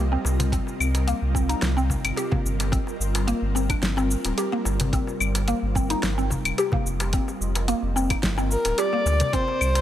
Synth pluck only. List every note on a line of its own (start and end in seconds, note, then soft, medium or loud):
0.00 0.11 A#3 medium
0.12 0.24 C4 medium
0.52 0.66 C4 medium
1.07 1.21 A#3 loud
1.35 1.49 C4 medium
1.49 1.62 D#4 medium
1.77 1.89 C4 medium
2.17 2.31 G4 medium
2.31 2.71 A#3 medium
2.72 2.86 C4 medium
3.27 3.41 A#3 loud
3.55 3.69 C4 medium
3.69 3.82 D4 medium
3.97 4.10 C4 medium
4.38 4.51 G4 medium
4.52 4.92 A#3 medium
4.93 5.07 C4 medium
5.48 5.62 A#3 loud
5.75 5.89 C4 medium
5.90 6.02 D#4 medium
6.18 6.30 C4 medium
6.58 6.71 G4 medium
6.73 7.12 A#3 medium
7.13 7.27 C4 medium
7.68 7.82 A#3 loud
7.96 8.10 C4 medium
8.10 8.23 D#4 medium
8.38 8.50 C4 medium
8.78 8.91 G4 medium
8.93 9.32 A#3 medium
9.33 9.47 C4 medium